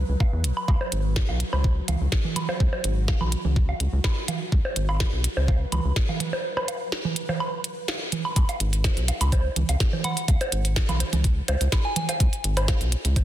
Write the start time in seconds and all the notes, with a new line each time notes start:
Already playing: F#3 B4
0.09 C#2
0.20 kick, low woodblock
0.33 E2
0.44 B1, closed hi-hat
0.57 high woodblock
0.68 C#2 F#4, kick, high woodblock, low woodblock
0.81 high bongo
0.92 G#1, closed hi-hat
1.16 kick, snare
1.29 B1, low woodblock
1.40 closed hi-hat
1.53 C#2, high bongo, high woodblock
1.64 kick
1.88 C#2, closed hi-hat, low conga, low woodblock
2.01 C#2
2.12 kick, snare
2.25 low conga
2.36 closed hi-hat, low conga, high woodblock
2.49 high bongo, low woodblock
2.60 C#2, kick
2.73 high bongo
2.84 G#1, closed hi-hat
3.08 kick, snare, low woodblock
3.21 B1, low conga, high woodblock
3.32 closed hi-hat
3.45 C#2, low conga
3.56 kick
3.69 low woodblock
3.80 C#2, closed hi-hat
3.93 C#2
4.04 kick, snare, high woodblock
4.28 closed hi-hat, low conga, low woodblock
4.52 C#2 B4, kick
4.65 high bongo
4.76 G#1, closed hi-hat
4.89 high woodblock, low woodblock
5.00 kick, snare
5.13 B1
5.24 closed hi-hat
5.37 C#2, high bongo
5.48 kick, low woodblock
5.72 C#2, closed hi-hat, low conga, high woodblock
5.85 C#2
5.96 kick, snare
6.09 low conga, low woodblock
6.20 closed hi-hat, low conga
6.33 high bongo
6.57 high bongo, high woodblock
6.68 closed hi-hat, low woodblock
6.92 snare
7.05 low conga
7.16 closed hi-hat
7.29 high bongo, low conga, low woodblock
7.40 high woodblock
7.64 closed hi-hat
7.88 snare, low woodblock
8.12 closed hi-hat, low conga
8.25 high woodblock
8.36 C#2, kick, closed hi-hat, high woodblock
8.49 closed hi-hat, low woodblock
8.60 G#1, closed hi-hat
8.73 closed hi-hat
8.84 kick, snare, closed hi-hat, high bongo
8.97 B1, closed hi-hat
9.08 closed hi-hat, low woodblock
9.21 C#2, closed hi-hat, high woodblock
9.32 kick, closed hi-hat, high bongo
9.56 C#2, closed hi-hat, low conga
9.69 C#2, closed hi-hat, low woodblock
9.80 kick, snare, closed hi-hat
9.93 high bongo, low conga
10.04 F#5, closed hi-hat, low conga, high woodblock
10.17 closed hi-hat
10.28 C#2, kick, closed hi-hat, low woodblock
10.41 closed hi-hat, high bongo
10.52 G#1, closed hi-hat
10.65 closed hi-hat
10.76 kick, snare, closed hi-hat
10.89 B1, closed hi-hat, low conga, high woodblock, low woodblock
11.00 closed hi-hat, high bongo
11.13 C#2, closed hi-hat, low conga
11.24 kick, closed hi-hat
11.48 C#2, closed hi-hat, high bongo, low woodblock
11.61 C#2, closed hi-hat
11.72 kick, snare, closed hi-hat, high woodblock
11.85 G#5
11.96 G#5, closed hi-hat, low conga
12.09 G#5, closed hi-hat, high bongo, low woodblock
12.20 C#2, kick, closed hi-hat
12.33 closed hi-hat
12.44 G#1, closed hi-hat
12.57 closed hi-hat, high bongo, high woodblock
12.68 kick, snare, closed hi-hat, low woodblock
12.81 B1, closed hi-hat
12.92 closed hi-hat
13.05 C#2, closed hi-hat
13.16 kick, closed hi-hat, high bongo